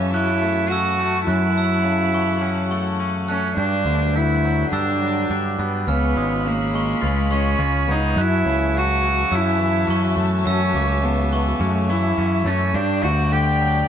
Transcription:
Already playing: clean electric guitar F#2 C#3 E3, picked electric bass F#2, cello C#4, string section F#4 E5 A5, glockenspiel A6
0.14 clean electric guitar C#4, cello E4, glockenspiel F#6
0.42 clean electric guitar A3
0.70 clean electric guitar C#4, cello F#4, glockenspiel E6
0.99 clean electric guitar A3
1.27 clean electric guitar F#2, picked electric bass F#2, cello E4, string section F#5, glockenspiel F#6
1.58 glockenspiel E6
1.84 clean electric guitar C#3
2.14 clean electric guitar E3, glockenspiel C#6
2.42 clean electric guitar C#4
2.71 clean electric guitar A3, glockenspiel C#6
3.00 clean electric guitar C#4
3.29 clean electric guitar A3, cello C#4, glockenspiel F#6
3.56 picked electric bass G2, clean electric guitar G2, string section F#3 B4 G5, cello D4, glockenspiel G6
3.85 picked electric bass D2, clean electric guitar D3
4.14 clean electric guitar D3, cello E4, glockenspiel G6
4.45 clean electric guitar F#3
4.72 picked electric bass G2, cello D4, clean electric guitar D4, glockenspiel E6
5.01 clean electric guitar F#3
5.30 picked electric bass G2, clean electric guitar D4, glockenspiel D6
5.59 picked electric bass G2, clean electric guitar B3
5.87 picked electric bass C#2, clean electric guitar C#3, cello B3, string section F4 C#5 B5, glockenspiel F6
6.17 picked electric bass G#1, clean electric guitar G#3, glockenspiel D#6
6.45 clean electric guitar C#3, cello A#3
6.74 clean electric guitar G#3, glockenspiel C#6
7.01 picked electric bass C#2, cello G#3, clean electric guitar F4
7.31 clean electric guitar G#3, cello C#4, glockenspiel C#6
7.59 picked electric bass C#2, clean electric guitar F4
7.88 picked electric bass C#2, clean electric guitar B3, cello D#4, glockenspiel G#6
8.16 picked electric bass F#2, clean electric guitar F#2, string section F#4 E5 A5, glockenspiel F#6
8.21 cello E4
8.45 picked electric bass C#2, clean electric guitar C#3
8.73 clean electric guitar C#3, glockenspiel F#6
8.78 cello F#4
9.02 clean electric guitar E3
9.31 picked electric bass F#2, clean electric guitar C#4, glockenspiel E6
9.36 cello E4
9.59 clean electric guitar E3
9.87 picked electric bass F#2, clean electric guitar C#4, glockenspiel C#6
10.16 picked electric bass F#2, clean electric guitar A3
10.45 clean electric guitar F#2, picked electric bass F#2, cello C#4, glockenspiel E6
10.73 picked electric bass C#2, clean electric guitar C#3, glockenspiel D6
11.03 clean electric guitar C#3, cello B3
11.32 clean electric guitar E3, glockenspiel C#6
11.60 picked electric bass F#2, cello A3, clean electric guitar C#4
11.90 clean electric guitar E3, cello E4, glockenspiel C#6
12.17 picked electric bass F#2, clean electric guitar C#4
12.44 picked electric bass F#2, clean electric guitar A3, cello C#4, glockenspiel A6
12.74 picked electric bass G2, clean electric guitar G2, cello D4, string section D5 G5, glockenspiel G6
13.03 picked electric bass D2, clean electric guitar D3, cello F#4
13.32 clean electric guitar D3, cello G4, glockenspiel G6
13.61 clean electric guitar F#3

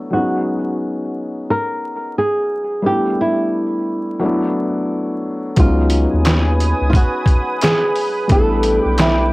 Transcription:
Already playing: felt piano F#3 A3 B3 D4 E4
0.10 felt piano F#3 G#3 B3, nylon-string guitar F#4
0.15 felt piano C#4 D#4
1.50 nylon-string guitar A#4
2.18 nylon-string guitar G#4
2.82 felt piano G3 A3 B3 D4
2.86 felt piano E4, nylon-string guitar G4
3.21 nylon-string guitar E4
4.19 felt piano F#3 A3 B3
4.24 felt piano D4 E4
5.56 analog synth bass C#2, felt piano F#3 G#3 B3 C#4, nylon-string guitar F4, analog synth pad B4 G#5 D#6, kick, closed hi-hat
5.61 felt piano D#4
5.90 closed hi-hat
6.14 analog synth bass D#2
6.25 snare, clap, closed hi-hat
6.60 closed hi-hat
6.81 analog synth bass C#2
6.90 nylon-string guitar F4, kick
6.95 nylon-string guitar F#4, closed hi-hat
7.26 kick, closed hi-hat
7.61 nylon-string guitar G#4, snare, clap, closed hi-hat
7.96 open hi-hat
8.28 analog synth bass A1, felt piano G3 A3 B3, nylon-string guitar A4, analog synth pad G5 D6, kick, closed hi-hat
8.32 felt piano D4 E4
8.63 closed hi-hat
8.84 analog synth bass B1, nylon-string guitar G4
8.98 nylon-string guitar E4, snare, clap, closed hi-hat

